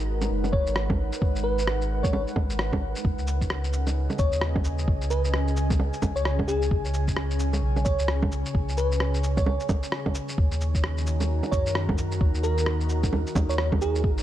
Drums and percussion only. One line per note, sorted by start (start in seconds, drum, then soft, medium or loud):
0.21 low bongo soft
0.21 shaker medium
0.44 low bongo soft
0.44 shaker soft
0.53 kick loud
0.67 shaker medium
0.76 cross-stick loud
0.90 kick loud
0.90 low bongo medium
1.13 shaker medium
1.22 kick loud
1.36 shaker soft
1.58 shaker medium
1.67 cross-stick loud
1.81 shaker soft
2.04 kick loud
2.04 low bongo soft
2.04 shaker medium
2.13 low bongo medium
2.28 shaker soft
2.36 kick loud
2.36 low bongo medium
2.50 shaker medium
2.59 cross-stick loud
2.73 kick medium
2.73 low bongo medium
2.96 shaker medium
3.05 kick loud
3.18 shaker soft
3.27 cabasa medium
3.41 kick medium
3.41 shaker medium
3.50 cross-stick loud
3.64 shaker soft
3.73 cabasa medium
3.87 low bongo soft
3.87 shaker medium
4.10 low bongo soft
4.10 shaker soft
4.19 kick loud
4.19 cabasa medium
4.32 shaker medium
4.41 cross-stick loud
4.56 kick loud
4.56 low bongo medium
4.65 cabasa medium
4.78 shaker medium
4.88 kick loud
5.02 shaker soft
5.10 cabasa medium
5.25 shaker medium
5.34 cross-stick loud
5.48 shaker soft
5.57 cabasa medium
5.70 kick loud
5.70 low bongo soft
5.70 shaker medium
5.80 low bongo medium
5.93 cabasa soft
5.93 shaker soft
6.02 kick loud
6.02 low bongo medium
6.02 cabasa medium
6.16 shaker soft
6.25 cross-stick loud
6.39 kick medium
6.39 low bongo medium
6.48 cabasa medium
6.62 shaker medium
6.71 kick loud
6.85 shaker soft
6.94 cabasa medium
7.08 kick medium
7.08 shaker medium
7.17 cross-stick loud
7.31 shaker soft
7.39 cabasa medium
7.53 low bongo soft
7.53 shaker medium
7.76 low bongo soft
7.76 shaker soft
7.85 kick loud
7.85 cabasa medium
7.99 shaker medium
8.08 cross-stick loud
8.22 kick medium
8.22 low bongo medium
8.32 cabasa medium
8.46 shaker medium
8.55 kick loud
8.69 shaker soft
8.77 cabasa medium
8.92 shaker medium
9.00 cross-stick loud
9.14 shaker soft
9.24 cabasa medium
9.37 kick loud
9.37 low bongo soft
9.37 shaker medium
9.46 low bongo medium
9.60 cabasa soft
9.60 shaker soft
9.69 kick loud
9.69 low bongo medium
9.69 cabasa medium
9.83 shaker medium
9.92 cross-stick loud
10.06 kick medium
10.06 low bongo medium
10.15 cabasa medium
10.29 shaker medium
10.38 kick loud
10.52 shaker soft
10.61 cabasa medium
10.75 kick medium
10.75 shaker medium
10.84 cross-stick loud
10.98 shaker soft
11.07 cabasa medium
11.21 low bongo soft
11.21 shaker medium
11.43 low bongo soft
11.43 shaker soft
11.52 kick loud
11.52 cabasa medium
11.66 shaker medium
11.75 cross-stick loud
11.89 kick loud
11.89 low bongo medium
11.98 cabasa medium
12.12 shaker medium
12.21 kick loud
12.35 shaker soft
12.44 cabasa medium
12.58 shaker medium
12.66 cross-stick loud
12.81 shaker soft
12.89 cabasa medium
13.03 kick loud
13.03 low bongo soft
13.03 shaker medium
13.13 low bongo medium
13.27 cabasa soft
13.27 shaker soft
13.35 kick loud
13.35 low bongo medium
13.35 cabasa medium
13.50 shaker medium
13.58 cross-stick loud
13.72 kick medium
13.72 low bongo medium
13.81 cabasa medium
13.95 shaker medium
14.04 kick loud
14.18 shaker soft